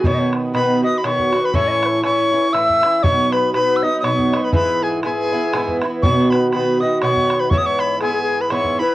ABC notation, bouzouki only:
X:1
M:3/4
L:1/8
Q:"Swing" 1/4=120
K:Bmix
V:1 name="Bouzouki"
[B,,D,B,F]2 [B,,D,B,F] [D,B,F] [B,,D,B,F] [D,B,F] | [A,,E,CE]2 [A,,E,CE] [E,CE] [A,,E,CE] [E,CE] | [B,,F,B,D]2 [B,,F,B,D] [F,B,D] [B,,F,B,D] [F,B,D] | [G,,E,B,E]2 [G,,E,B,E] [E,B,E] [G,,E,B,E] [E,B,E] |
[B,,D,B,F]2 [B,,D,B,F] [D,B,F] [B,,D,B,F]2 | [G,,E,B,E]2 [G,,E,B,E]2 [G,,E,B,E] [E,B,E] |]